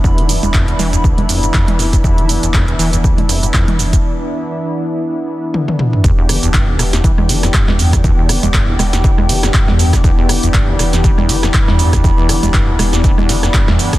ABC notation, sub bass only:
X:1
M:4/4
L:1/16
Q:"Swing 16ths" 1/4=120
K:Em
V:1 name="Sub bass" clef=bass
E,,,3 E,,,3 E,,,3 E,,,3 z E,,,3 | E,,,3 E,,,3 E,,,3 E,,,3 z E,,,3 | z16 | E,,,3 E,,,3 E,,,3 E,,,3 z E,,3 |
E,,,3 E,,,3 E,,,3 E,,,3 z E,,3 | E,,,3 E,,,3 E,,,3 E,,,3 z E,,3 | E,,,3 E,,,3 E,,,3 E,,,3 z E,, z2 |]